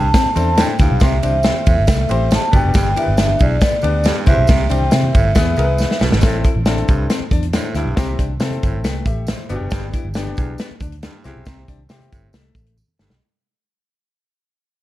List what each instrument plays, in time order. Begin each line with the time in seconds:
Already playing: fingered electric bass C2, hollow-body jazz guitar D4, vibraphone A5
0.14 hollow-body jazz guitar C4, kick, snare, ride, tambourine
0.26 muted fingered electric bass stroke
0.35 fingered electric bass E2, grand piano C4 E4 A4 C5, hollow-body jazz guitar D4, vibraphone A5, ride, tambourine, high conga
0.57 baritone saxophone A2, hollow-body jazz guitar D4, vibraphone G5, snare, ride, tambourine, high conga
0.68 muted conga
0.79 fingered electric bass D2, baritone saxophone G2, hollow-body jazz guitar E4, vibraphone F5, kick, snare, ride, tambourine, low conga
0.89 fingered electric bass B1, low conga
1.00 fingered electric bass C2, baritone saxophone C3, grand piano C4 E4 G4 C5, hollow-body jazz guitar C4, kick, snare, ride, tambourine, muted conga, low conga
1.05 vibraphone E5
1.23 fingered electric bass C2, grand piano C4 E4 G4 C5, hollow-body jazz guitar D4, ride, tambourine, high conga
1.33 high conga
1.43 hollow-body jazz guitar C4, snare, ride, tambourine
1.54 muted conga, high conga
1.66 fingered electric bass E2, baritone saxophone A2, kick, ride, tambourine
1.78 fingered electric bass G1
1.87 fingered electric bass C2, hollow-body jazz guitar A3, kick, snare, ride, tambourine
1.97 muted conga
2.08 fingered electric bass A1, grand piano C4 E4 G4 C5, ride, tambourine, high conga
2.31 snare, ride, tambourine, muted conga, high conga
2.35 vibraphone A5
2.42 muted conga
2.52 fingered electric bass G1, baritone saxophone B2, grand piano B3 D4 G4 B4, hollow-body jazz guitar B3, kick, ride, tambourine, low conga
2.56 vibraphone G5
2.62 fingered electric bass F#1, low conga
2.74 fingered electric bass G1, baritone saxophone G2, hollow-body jazz guitar G4, kick, snare, ride, tambourine, low conga
2.84 muted conga
2.96 grand piano B3 D4 G4 A#4, hollow-body jazz guitar E4, vibraphone E5, ride, tambourine, high conga
3.03 grand piano B4, high conga
3.08 fingered electric bass G1
3.17 hollow-body jazz guitar D4, snare, ride, tambourine
3.28 muted conga, high conga
3.39 fingered electric bass B1, baritone saxophone E2, vibraphone D5, kick, ride, tambourine
3.61 hollow-body jazz guitar B3, kick, snare, ride, tambourine
3.73 muted fingered electric bass stroke
3.82 fingered electric bass D2, grand piano B3 D4 G4 B4, hollow-body jazz guitar D4, ride, tambourine, high conga
4.04 baritone saxophone G2, hollow-body jazz guitar D4, snare, ride, tambourine, muted conga, high conga
4.16 muted conga
4.26 fingered electric bass C2, baritone saxophone E2, grand piano C4 E4 G4 B4, hollow-body jazz guitar E4, vibraphone E5, kick, snare, ride, tambourine, low conga
4.34 fingered electric bass B1, grand piano C5
4.38 low conga
4.47 fingered electric bass C2, baritone saxophone C3, hollow-body jazz guitar C4, kick, snare, ride, tambourine, muted conga, low conga
4.69 fingered electric bass C2, grand piano C4 E4 G4 C5, hollow-body jazz guitar D4, vibraphone G5, ride, tambourine, high conga
4.82 high conga
4.91 fingered electric bass C3, hollow-body jazz guitar C4, vibraphone E5, snare, ride, tambourine, muted conga
5.03 muted conga, high conga
5.14 fingered electric bass G1, baritone saxophone A2, kick, ride, tambourine
5.35 fingered electric bass E2, hollow-body jazz guitar B3, grand piano B3 E4 G#4 B4, kick, snare, ride, tambourine
5.56 fingered electric bass C2, grand piano B3 E4 G#4 A#4, ride, tambourine, high conga
5.64 grand piano B4
5.78 snare, tambourine, muted conga, high conga
5.90 snare, muted conga
6.01 fingered electric bass B1, baritone saxophone B2, hollow-body jazz guitar B3, snare, tambourine, low conga
6.11 fingered electric bass G#1, snare, low conga
6.21 fingered electric bass A1, baritone saxophone A2, grand piano C4 E4 A4, hollow-body jazz guitar A4, kick, snare, closed hi-hat, tambourine, low conga
6.35 muted conga
6.44 hollow-body jazz guitar E4, kick, closed hi-hat, tambourine, high conga
6.55 fingered electric bass A1, high conga
6.66 grand piano C4 E4 A4, hollow-body jazz guitar D4, snare, closed hi-hat, tambourine
6.77 closed hi-hat, high conga
6.88 fingered electric bass C2, baritone saxophone G2, kick, closed hi-hat, tambourine
7.10 hollow-body jazz guitar C4, snare, closed hi-hat, tambourine
7.20 muted fingered electric bass stroke
7.31 fingered electric bass E2, hollow-body jazz guitar D4, kick, closed hi-hat, tambourine, high conga
7.42 closed hi-hat
7.53 baritone saxophone A2, hollow-body jazz guitar D4, grand piano E4 C5, snare, closed hi-hat, tambourine, muted conga, high conga
7.74 fingered electric bass D2, baritone saxophone G2, hollow-body jazz guitar E4, grand piano G4 E5, snare, closed hi-hat, tambourine
7.85 fingered electric bass B1, low conga
7.96 fingered electric bass C2, baritone saxophone C3, grand piano C4 E4 G4, hollow-body jazz guitar C4, kick, snare, closed hi-hat, tambourine, muted conga, low conga
8.19 fingered electric bass C2, hollow-body jazz guitar D4, kick, closed hi-hat, tambourine, high conga
8.30 high conga
8.40 fingered electric bass C3, grand piano C4 E4 A4, hollow-body jazz guitar C4, snare, closed hi-hat, tambourine, muted conga
8.50 closed hi-hat, muted conga, high conga
8.63 fingered electric bass G1, baritone saxophone A2, kick, closed hi-hat, tambourine
8.83 fingered electric bass C2, hollow-body jazz guitar A3, grand piano B4 G5, snare, closed hi-hat, tambourine
8.94 muted conga
9.05 fingered electric bass A1, grand piano G4 E5, kick, closed hi-hat, tambourine, high conga
9.27 grand piano E4 C5, snare, closed hi-hat, tambourine, muted conga, high conga
9.39 muted conga
9.49 fingered electric bass G1, baritone saxophone B2, grand piano B3 D4 F#4, hollow-body jazz guitar B3, closed hi-hat, tambourine
9.56 grand piano G4
9.60 fingered electric bass F#1, low conga
9.71 fingered electric bass G1, baritone saxophone G2, hollow-body jazz guitar G4, kick, snare, closed hi-hat, tambourine, muted conga, low conga
9.83 muted conga
9.93 hollow-body jazz guitar E4, kick, closed hi-hat, tambourine, high conga
10.05 fingered electric bass G1, high conga
10.14 grand piano B3 D4 G4, hollow-body jazz guitar D4, snare, closed hi-hat, tambourine
10.27 muted conga, high conga
10.37 fingered electric bass B1, baritone saxophone E2, kick, closed hi-hat, tambourine
10.58 hollow-body jazz guitar B3, snare, closed hi-hat, tambourine
10.71 muted fingered electric bass stroke
10.80 fingered electric bass D2, hollow-body jazz guitar D4, kick, closed hi-hat, tambourine, high conga
10.92 closed hi-hat
11.03 baritone saxophone G2, hollow-body jazz guitar D4, snare, closed hi-hat, tambourine, high conga
11.14 muted conga
11.24 fingered electric bass C2, baritone saxophone E2, grand piano C4 E4 G4, hollow-body jazz guitar E4, snare, closed hi-hat, tambourine
11.36 fingered electric bass B1, low conga
11.45 fingered electric bass C2, baritone saxophone C3, hollow-body jazz guitar C4, kick, snare, closed hi-hat, tambourine, muted conga, low conga
11.68 fingered electric bass C2, hollow-body jazz guitar D4, kick, closed hi-hat, tambourine, high conga
11.78 high conga
11.89 fingered electric bass C3, grand piano C4 E4 G4, hollow-body jazz guitar C4, snare, closed hi-hat, tambourine
12.01 closed hi-hat, muted conga, high conga
12.12 fingered electric bass G1, baritone saxophone A2, kick, closed hi-hat, tambourine
12.33 fingered electric bass C2, hollow-body jazz guitar A3, snare, closed hi-hat, tambourine
12.55 fingered electric bass A1, kick, closed hi-hat, tambourine, high conga
12.66 closed hi-hat
12.77 tambourine, muted conga, high conga
12.88 muted conga, high conga
12.99 fingered electric bass G1, baritone saxophone G2, hollow-body jazz guitar A3, snare, tambourine, low conga
13.10 fingered electric bass B1, snare, low conga